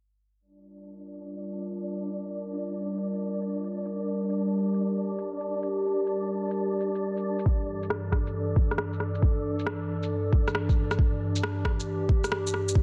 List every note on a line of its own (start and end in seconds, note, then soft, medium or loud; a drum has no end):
0.40 7.42 G3 medium
0.40 12.83 D4 medium
0.40 3.90 F4 medium
0.40 7.42 A#4 medium
0.40 12.83 D5 medium
0.77 shaker medium
1.21 shaker medium
1.66 shaker soft
1.88 shaker soft
2.10 shaker medium
2.54 shaker medium
2.98 shaker medium
3.42 shaker medium
3.64 shaker soft
3.85 shaker medium
3.93 7.43 G4 medium
4.30 shaker medium
4.74 shaker medium
5.18 shaker medium
5.41 shaker soft
5.63 shaker medium
6.07 shaker soft
6.51 shaker soft
6.80 shaker soft
6.95 shaker soft
7.17 shaker soft
7.39 shaker soft
7.46 12.83 G2 medium
7.46 12.83 E3 medium
7.46 12.83 D4 medium
7.46 10.96 A4 medium
7.46 kick loud
7.83 shaker soft
7.90 cross-stick medium
8.12 kick medium
8.12 cross-stick medium
8.27 shaker soft
8.56 kick loud
8.71 cross-stick soft
8.71 shaker soft
8.78 cross-stick loud
8.93 shaker soft
9.00 cross-stick soft
9.15 shaker soft
9.22 kick loud
9.59 shaker soft
9.67 cross-stick medium
10.03 shaker soft
10.33 kick loud
10.48 cross-stick soft
10.48 shaker soft
10.55 cross-stick loud
10.69 kick medium
10.69 shaker soft
10.91 cross-stick medium
10.91 shaker soft
10.99 12.83 G4 medium
10.99 kick loud
11.36 shaker medium
11.43 cross-stick medium
11.65 kick medium
11.65 cross-stick medium
11.80 shaker soft
12.09 kick medium
12.24 cross-stick medium
12.24 shaker soft
12.32 cross-stick medium
12.47 shaker soft
12.54 cross-stick soft
12.69 shaker soft
12.75 kick loud